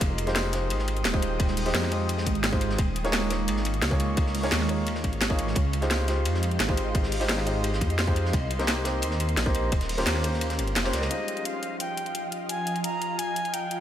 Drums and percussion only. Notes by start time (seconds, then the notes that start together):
0.01 kick, closed hi-hat, ride
0.18 closed hi-hat, ride
0.27 snare, closed hi-hat
0.35 snare, closed hi-hat, ride
0.53 snare, closed hi-hat, ride
0.70 closed hi-hat, ride
0.79 snare
0.88 closed hi-hat, ride
0.97 closed hi-hat
1.05 snare, closed hi-hat, ride
1.14 kick
1.22 closed hi-hat, ride
1.40 kick, closed hi-hat, ride
1.47 snare
1.57 closed hi-hat, open hi-hat
1.66 snare, closed hi-hat
1.74 snare, closed hi-hat, ride
1.83 snare
1.91 closed hi-hat, ride
2.09 closed hi-hat, ride
2.18 snare
2.26 kick, closed hi-hat, ride
2.35 closed hi-hat
2.43 snare, closed hi-hat, ride
2.53 kick
2.61 closed hi-hat, ride
2.70 snare
2.79 kick, closed hi-hat, ride
2.96 closed hi-hat, ride
3.04 snare, closed hi-hat
3.12 snare, closed hi-hat, ride
3.30 snare, closed hi-hat, ride
3.48 closed hi-hat, ride
3.57 snare
3.65 closed hi-hat, ride
3.74 closed hi-hat
3.82 snare, closed hi-hat, ride
3.91 kick
4.00 closed hi-hat, ride
4.17 kick, closed hi-hat, ride
4.26 snare
4.35 closed hi-hat, open hi-hat
4.43 snare, closed hi-hat
4.52 snare, closed hi-hat, ride
4.61 snare
4.69 closed hi-hat, ride
4.87 closed hi-hat, ride
4.95 snare
5.04 kick, closed hi-hat, ride
5.13 closed hi-hat
5.21 snare, closed hi-hat, ride
5.30 kick
5.38 closed hi-hat, ride
5.47 snare
5.55 kick, closed hi-hat, ride
5.73 closed hi-hat, ride
5.82 snare, closed hi-hat
5.90 snare, closed hi-hat, ride
6.08 snare, closed hi-hat, ride
6.25 closed hi-hat, ride
6.34 snare
6.43 closed hi-hat, ride
6.51 closed hi-hat
6.60 snare, closed hi-hat, ride
6.69 kick
6.77 closed hi-hat, ride
6.95 kick, closed hi-hat, ride
7.03 snare
7.12 closed hi-hat, open hi-hat
7.20 snare, closed hi-hat
7.28 snare, closed hi-hat, ride
7.38 snare
7.46 closed hi-hat, ride
7.64 closed hi-hat, ride
7.73 snare
7.81 kick, closed hi-hat, ride
7.90 closed hi-hat
7.99 snare, closed hi-hat, ride
8.07 kick
8.16 closed hi-hat, ride
8.25 snare
8.33 kick, closed hi-hat, ride
8.50 closed hi-hat, ride
8.59 snare, closed hi-hat
8.67 snare, closed hi-hat, ride
8.85 snare, closed hi-hat, ride
9.02 closed hi-hat, ride
9.11 snare
9.20 closed hi-hat, ride
9.29 closed hi-hat
9.37 snare, closed hi-hat, ride
9.46 kick
9.55 closed hi-hat, ride
9.72 kick, closed hi-hat, ride
9.81 snare, closed hi-hat
9.89 closed hi-hat, open hi-hat
9.98 snare, closed hi-hat
10.07 snare, closed hi-hat, ride
10.15 snare
10.24 closed hi-hat, ride
10.33 snare
10.41 closed hi-hat, ride
10.50 snare, closed hi-hat
10.59 closed hi-hat, ride
10.68 closed hi-hat
10.76 snare, closed hi-hat, ride
10.84 snare, ride
10.93 snare, closed hi-hat, ride
11.02 snare, ride
11.11 closed hi-hat
11.28 closed hi-hat
11.37 closed hi-hat
11.45 closed hi-hat
11.63 closed hi-hat
11.80 closed hi-hat
11.97 closed hi-hat
12.06 closed hi-hat
12.15 closed hi-hat
12.32 closed hi-hat
12.49 closed hi-hat
12.67 closed hi-hat
12.76 closed hi-hat
12.84 closed hi-hat
13.02 closed hi-hat
13.19 closed hi-hat
13.36 closed hi-hat
13.45 closed hi-hat
13.54 closed hi-hat
13.71 closed hi-hat